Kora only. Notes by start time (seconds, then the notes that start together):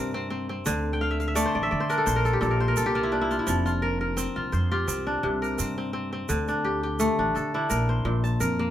Already playing: C3 C4 D4 F4 G4 A#4
0.14 C4
0.30 C4
0.49 C4
0.66 D3
0.93 G5
1.01 F5
1.11 E5
1.20 F5
1.28 E5
1.35 A3 D5
1.45 C5
1.55 D5
1.63 E5
1.71 D5
1.80 C5
1.89 D4 A#4
1.98 A4
2.06 C5
2.16 A#4
2.25 A4
2.33 G4
2.41 A#2 A4
2.51 A#4
2.60 C5
2.68 A#4
2.77 A4
2.86 G4
2.95 A#3 F4
3.03 E4
3.12 D4
3.21 E4
3.31 F4
3.39 E4
3.47 F3
3.66 F4
3.82 A#4
4.01 A#4
4.17 C4
4.36 F4
4.52 C5
4.71 F4 G4
4.88 C4
5.07 D4
5.23 C3
5.42 A#4
5.58 C4
5.78 C4
5.93 C4
6.13 C4
6.29 D3
6.48 D4
6.65 G4
6.83 G4
7.00 A3
7.19 D4
7.36 A4
7.54 D4 E4
7.70 A#4
7.89 C5
8.05 A#2
8.24 A5
8.40 A#4
8.59 A#3